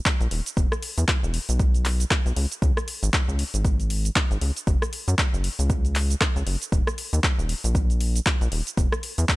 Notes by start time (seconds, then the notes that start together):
0.06 kick, clap, closed hi-hat, shaker
0.21 A#1, closed hi-hat, shaker
0.31 D#1, open hi-hat
0.46 closed hi-hat, shaker
0.57 E1, kick, closed hi-hat, shaker
0.72 cross-stick, shaker
0.82 open hi-hat
0.98 E2, closed hi-hat, shaker
1.08 kick, clap, closed hi-hat, shaker
1.23 E1, shaker
1.34 open hi-hat
1.49 B1, closed hi-hat, shaker
1.59 kick, closed hi-hat, shaker
1.74 closed hi-hat, shaker
1.85 clap, open hi-hat
2.00 closed hi-hat, shaker
2.11 kick, cross-stick, clap, closed hi-hat, shaker
2.26 B1, closed hi-hat, shaker
2.36 C#2, open hi-hat
2.51 closed hi-hat, shaker
2.62 C#2, kick, closed hi-hat, shaker
2.77 cross-stick, shaker
2.88 open hi-hat
3.03 G#1, closed hi-hat, shaker
3.13 kick, clap, closed hi-hat, shaker
3.28 C#2, shaker
3.39 open hi-hat
3.54 G#1, closed hi-hat, shaker
3.65 kick, closed hi-hat, shaker
3.80 closed hi-hat, shaker
3.90 open hi-hat
4.05 closed hi-hat, shaker
4.16 kick, clap, closed hi-hat, shaker
4.31 G#1, closed hi-hat, shaker
4.41 C#2, open hi-hat
4.57 closed hi-hat, shaker
4.67 F#1, kick, closed hi-hat, shaker
4.82 cross-stick, shaker
4.93 open hi-hat
5.08 F#2, closed hi-hat, shaker
5.18 kick, clap, closed hi-hat, shaker
5.33 F#1, shaker
5.44 open hi-hat
5.59 C#2, closed hi-hat, shaker
5.70 kick, closed hi-hat, shaker
5.85 closed hi-hat, shaker
5.95 clap, open hi-hat
6.10 closed hi-hat, shaker
6.21 kick, cross-stick, clap, closed hi-hat, shaker
6.36 C#2, closed hi-hat, shaker
6.47 F#1, open hi-hat
6.62 closed hi-hat, shaker
6.72 D#1, kick, closed hi-hat, shaker
6.87 cross-stick, shaker
6.98 open hi-hat
7.13 D#2, closed hi-hat, shaker
7.24 kick, clap, closed hi-hat, shaker
7.39 D#1, shaker
7.49 open hi-hat
7.64 A#1, closed hi-hat, shaker
7.75 kick, closed hi-hat, shaker
7.90 closed hi-hat, shaker
8.01 open hi-hat
8.16 closed hi-hat, shaker
8.26 kick, clap, closed hi-hat, shaker
8.41 A#1, closed hi-hat, shaker
8.52 D#1, open hi-hat
8.67 closed hi-hat, shaker
8.77 E1, kick, closed hi-hat, shaker
8.92 cross-stick, shaker
9.03 open hi-hat
9.18 E2, closed hi-hat, shaker
9.29 kick, clap, closed hi-hat, shaker